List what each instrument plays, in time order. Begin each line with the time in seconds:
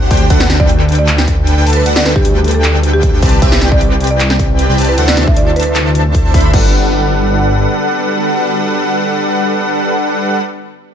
Already playing: ambient pad D3 A3 C4 G4
0.01 detuned saw bass D2, supersaw synth D3 D4 G4 C5 F#5, digital synth lead F#5
0.11 detuned saw bass D2, supersaw synth D3 D4 G4 C5 G5, digital synth lead G5, kick, closed hi-hat, open hi-hat
0.17 closed hi-hat
0.30 detuned saw bass D2, supersaw synth D3 D4 A4 B4 F#5, ambient pad G3 B4, digital synth lead F#5, kick, closed hi-hat, ride
0.40 snare
0.50 detuned saw bass D2, supersaw synth D3 D4 A4 B4 G5, digital synth lead G5, snare, closed hi-hat
0.60 marimba D5, kick
0.69 closed hi-hat
0.79 clap
0.89 closed hi-hat
0.92 closed hi-hat
0.95 marimba D5, closed hi-hat
1.08 clap, closed hi-hat, ride
1.18 snare
1.28 kick, closed hi-hat
1.47 closed hi-hat
1.57 detuned saw bass D2, supersaw synth D3 D4 A4 B4 G5, digital synth lead G5
1.67 detuned saw bass D2, supersaw synth D3 D4 A4 B4 A5, digital synth lead A5, closed hi-hat, open hi-hat
1.73 marimba B4, closed hi-hat
1.86 detuned saw bass D2, supersaw synth D3 D4 A4 B4 F#5, digital synth lead F#5, closed hi-hat, ride
1.96 marimba D5, snare
2.05 detuned saw bass D2, supersaw synth D3 D4 A4 B4 G5, marimba B4, digital synth lead G5, snare, closed hi-hat
2.16 marimba G4, kick
2.25 marimba G4, closed hi-hat
2.44 closed hi-hat
2.48 closed hi-hat
2.51 marimba A4, closed hi-hat
2.64 clap, closed hi-hat, ride
2.83 closed hi-hat
2.93 marimba G4
3.03 kick, closed hi-hat
3.13 detuned saw bass D2, supersaw synth D3 D4 A4 B4 G5, digital synth lead G5
3.22 detuned saw bass C2, ambient pad C3 G3 E4, supersaw synth C4 G4 B4 D5 A5, digital synth lead A5, kick, closed hi-hat, open hi-hat
3.29 closed hi-hat
3.42 detuned saw bass C2, supersaw synth C4 G4 B4 D5 E5, digital synth lead E5, kick, closed hi-hat, ride
3.52 snare
3.61 detuned saw bass C2, supersaw synth C4 G4 B4 D5 G5, digital synth lead G5, snare, closed hi-hat
3.72 marimba D5, kick
3.81 closed hi-hat
3.91 clap
4.00 closed hi-hat
4.04 closed hi-hat
4.07 marimba D5, closed hi-hat
4.20 clap, closed hi-hat, ride
4.30 snare
4.39 kick, closed hi-hat
4.59 closed hi-hat
4.69 detuned saw bass C2, supersaw synth C4 G4 B4 D5 G5, digital synth lead G5
4.78 detuned saw bass C2, supersaw synth C4 G4 B4 D5 A5, digital synth lead A5, closed hi-hat, open hi-hat
4.85 closed hi-hat
4.89 marimba B4
4.98 detuned saw bass D2, ambient pad D3 F#3 C4, supersaw synth D4 A4 C5 E5 F#5, digital synth lead F#5, closed hi-hat, ride
5.08 marimba D5, snare
5.17 detuned saw bass D2, supersaw synth D4 A4 C5 E5 A5, digital synth lead A5, snare, closed hi-hat
5.27 marimba E5, kick
5.37 marimba D5, closed hi-hat
5.47 marimba D5
5.56 marimba B4, closed hi-hat
5.60 closed hi-hat
5.63 marimba B4, closed hi-hat
5.76 clap, closed hi-hat, ride
5.95 closed hi-hat
6.15 kick, closed hi-hat
6.25 detuned saw bass D2, supersaw synth D4 A4 C5 E5 A5, digital synth lead A5
6.34 detuned saw bass D2, supersaw synth D4 A4 C5 E5 B5, digital synth lead B5, kick, closed hi-hat, open hi-hat
6.41 closed hi-hat
6.53 detuned saw bass G1, ambient pad D3 G3 B3 F#4, supersaw synth G3 D4 A4 B4 F#5, digital synth lead F#5, kick, crash